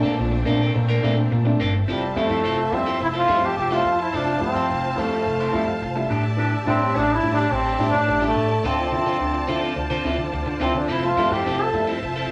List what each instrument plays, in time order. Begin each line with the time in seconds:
Already playing: string section A3 C4 D4
0.03 picked electric bass A#2, clean electric guitar A#3 D4 A4
0.18 picked electric bass A#1, grand piano A#2 F3
0.32 muted clean electric guitar stroke
0.45 picked electric bass A#2, grand piano A3 C4 D4, clean electric guitar A#3 D4 A4
0.60 clean electric guitar A#3 D4 A4, grand piano C4 D4
0.75 picked electric bass A#2, muted clean electric guitar stroke
0.89 clean electric guitar A#3 D4 A#4
1.02 picked electric bass A#2, grand piano A3 C4 D4, clean electric guitar A#3 D4 A4
1.17 muted clean electric guitar stroke
1.31 grand piano A#2 F3, picked electric bass A#2, muted clean electric guitar stroke
1.45 grand piano A3 C4 D4, muted clean electric guitar stroke
1.60 picked electric bass G1, clean electric guitar A#3 D4 A4, grand piano C4 D4
1.74 muted clean electric guitar stroke
1.87 picked electric bass F1, grand piano F3, trombone G3, clean electric guitar C4 E4 A4, string section F4 C5 E5 A5
2.01 grand piano A3 E4
2.16 picked electric bass F2, grand piano G3 A3 E4, trombone A3, clean electric guitar C4 E4 A4
2.30 picked electric bass F2, clean electric guitar C4 E4 A4
2.44 picked electric bass F1, grand piano F3, clean electric guitar C4 E4 A4
2.58 muted clean electric guitar stroke
2.72 picked electric bass F2, grand piano G3 A3 E4, trombone C4, muted clean electric guitar stroke
2.86 grand piano A3 E4, clean electric guitar C4 E4 A4
3.00 picked electric bass F1, trombone E4, muted clean electric guitar stroke
3.14 clean electric guitar C4 E4 A4, trombone F4
3.28 picked electric bass F2, grand piano G3 A3 E4, clean electric guitar C4 E4 A4
3.42 picked electric bass F2, trombone G4, muted clean electric guitar stroke
3.55 picked electric bass F1, grand piano F3, trombone G4, muted clean electric guitar stroke
3.70 grand piano G3 A3 E4, clean electric guitar C4 E4 A4, trombone F4
3.84 picked electric bass F2, grand piano A3 E4, muted clean electric guitar stroke
3.99 trombone E4, muted clean electric guitar stroke
4.13 picked electric bass F1, grand piano F3, clean electric guitar C4 E4 A4, trombone D4, string section F5
4.26 grand piano A3 E4
4.39 picked electric bass F2, grand piano G3 A3 E4, muted clean electric guitar stroke
4.43 trombone C4
4.55 picked electric bass F2, clean electric guitar C4 E4 A4
4.69 picked electric bass F1, grand piano F3, muted clean electric guitar stroke
4.84 muted clean electric guitar stroke
4.96 picked electric bass F2, grand piano G3 A3 E4, trombone A3, clean electric guitar C4 E4 A4
5.10 grand piano A3 E4, clean electric guitar C4 E4 A4
5.26 picked electric bass F1, muted clean electric guitar stroke
5.40 clean electric guitar C4 E4 C5
5.52 picked electric bass F2, grand piano G3 A3 E4, clean electric guitar C4 E4 A4
5.68 picked electric bass F2, muted clean electric guitar stroke
5.81 picked electric bass F1, grand piano F3, muted clean electric guitar stroke
5.95 grand piano G3 A3 E4, muted clean electric guitar stroke
6.08 picked electric bass A2, grand piano D4 E4, clean electric guitar D4 G4 A4, string section G4 D5 E5 A5
6.24 muted clean electric guitar stroke
6.37 grand piano A2 E3, clean electric guitar D4 G4 A4
6.51 grand piano D4 E4
6.65 picked electric bass A2, grand piano G3 D4 E4, trombone C4, clean electric guitar D4 G4 A4
6.81 picked electric bass A2, clean electric guitar D4 G4 A4
6.94 picked electric bass A1, grand piano A2 E3, clean electric guitar D4 G4 A4, trombone D4
7.09 muted clean electric guitar stroke
7.15 trombone E4
7.21 picked electric bass A2, grand piano G3 D4 E4, muted clean electric guitar stroke
7.34 trombone D4, grand piano D4 E4, clean electric guitar A4
7.38 clean electric guitar D4 G4
7.51 picked electric bass A1, trombone C4, muted clean electric guitar stroke
7.65 clean electric guitar D4 G4 A4
7.78 picked electric bass A2, grand piano G3 D4 E4, clean electric guitar D4 G4 A4
7.89 trombone D4
7.94 picked electric bass A2, muted clean electric guitar stroke
8.07 picked electric bass A1, grand piano A2 E3, muted clean electric guitar stroke
8.20 grand piano G3 D4 E4, clean electric guitar D4 G4 A4
8.27 trombone A3
8.36 picked electric bass A2, grand piano D4 E4, muted clean electric guitar stroke
8.50 muted clean electric guitar stroke
8.63 picked electric bass D2, grand piano D3, clean electric guitar C4 F4 A4, trombone C4, string section F4 C5
8.78 grand piano C4 E4
8.85 trombone C4
8.92 picked electric bass D3, grand piano F3 C4 E4, muted clean electric guitar stroke
9.06 picked electric bass D3, clean electric guitar C4 F4 A4
9.20 picked electric bass D2, grand piano D3
9.34 muted clean electric guitar stroke
9.47 picked electric bass D3, grand piano F3 C4 E4, clean electric guitar C4 F4 A4
9.62 grand piano C4 E4, clean electric guitar C4 F4 A4
9.76 picked electric bass D2, muted clean electric guitar stroke
9.90 picked electric bass D3, clean electric guitar C4 F4 C5
10.04 picked electric bass D2, grand piano F3 C4 E4, clean electric guitar C4 F4 A4
10.18 picked electric bass D3
10.33 picked electric bass D2, grand piano C4 E4, muted clean electric guitar stroke
10.46 picked electric bass D3, grand piano D3, muted clean electric guitar stroke
10.60 picked electric bass D2, grand piano F3 C4 E4, clean electric guitar C4 F4 A4, trombone C4
10.74 picked electric bass D3, trombone D4, muted clean electric guitar stroke
10.88 picked electric bass F1, grand piano F3, clean electric guitar C4 E4 A4, trombone E4, string section E5 A5
11.03 grand piano A3 E4, trombone F4
11.17 picked electric bass F2, grand piano G3 A3 E4, clean electric guitar C4 E4 A4
11.31 picked electric bass F2, clean electric guitar C4 E4 A4, trombone G4
11.45 picked electric bass F1, grand piano F3, clean electric guitar C4 E4 A4
11.60 trombone A4, muted clean electric guitar stroke
11.73 picked electric bass F2, grand piano G3 A3 E4, muted clean electric guitar stroke
11.87 grand piano A3 E4, clean electric guitar C4 E4 A4
12.02 picked electric bass F1, muted clean electric guitar stroke
12.16 clean electric guitar C4 E4 A4